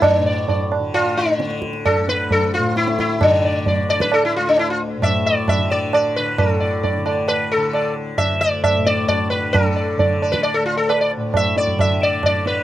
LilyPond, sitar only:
\new Staff \with { instrumentName = "Sitar" } { \time 7/4 \tempo 4 = 133 << { r8 d''8 d''8 r1 r4. | r8 d''8 d''8 r2 r8 d''8 r8 d''8 d''8 d''8 r8 | r8 d''8 d''8 d''8 r4 d''8 r2. r8 | r8 d''8 d''8 d''8 r1 r4 | } \\ { d'4. r8 f'8 d'4 r8 a'8 b'8 a'8 f'8 e'8 e'8 | d'4. d''16 b'16 a'16 e'16 f'16 d'16 e'16 f'16 r8 e''8 d''8 e''8 d''8 d''8 b'8 | a'4. r8 b'8 a'4 r8 e''8 d''8 e''8 d''8 d''8 b'8 | a'4. r16 b'16 d''16 a'16 f'16 a'16 b'16 d''16 r8 e''8 d''8 e''8 d''8 d''8 b'8 | } >> }